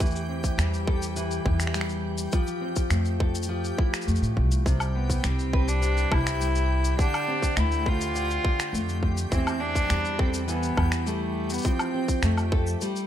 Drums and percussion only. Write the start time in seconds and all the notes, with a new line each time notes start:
0.00 kick, shaker
0.06 shaker
0.11 shaker
0.16 shaker
0.44 kick, shaker
0.59 finger snap, shaker
0.74 shaker
0.87 kick
1.02 shaker
1.16 shaker
1.31 shaker
1.46 kick
1.60 finger snap, shaker
1.67 finger snap
1.74 finger snap, shaker
1.81 finger snap
1.89 shaker
2.18 shaker
2.32 kick, shaker
2.47 shaker
2.76 kick, shaker
2.90 finger snap, shaker
3.05 shaker
3.20 kick
3.35 shaker
3.43 shaker
3.65 shaker
3.79 kick
3.94 finger snap, shaker
4.01 shaker
4.08 shaker
4.16 shaker
4.23 shaker
4.37 kick
4.52 shaker
4.66 kick, shaker
4.80 low woodblock, shaker
5.10 kick, shaker
5.24 finger snap, shaker
5.39 shaker
5.53 kick
5.68 shaker
5.83 shaker
5.97 shaker
6.12 kick, low woodblock
6.27 finger snap, shaker
6.41 shaker
6.55 shaker
6.85 shaker
6.99 kick, shaker
7.14 low woodblock, shaker
7.43 kick, shaker
7.57 finger snap, shaker
7.72 shaker
7.86 kick
8.01 shaker
8.16 shaker
8.31 shaker
8.45 kick
8.60 finger snap, shaker
8.75 shaker
8.89 shaker
9.03 kick
9.17 shaker
9.32 kick, shaker
9.47 low woodblock, shaker
9.76 kick, shaker
9.90 finger snap, shaker
10.05 shaker
10.19 kick
10.34 shaker
10.49 shaker
10.63 shaker
10.77 kick, low woodblock
10.92 finger snap, shaker
11.07 shaker
11.50 shaker
11.54 shaker
11.58 shaker
11.62 kick, shaker
11.65 shaker
11.79 low woodblock, shaker
12.08 kick, shaker
12.23 finger snap, shaker
12.38 low woodblock, shaker
12.52 kick
12.67 shaker
12.81 shaker
12.96 shaker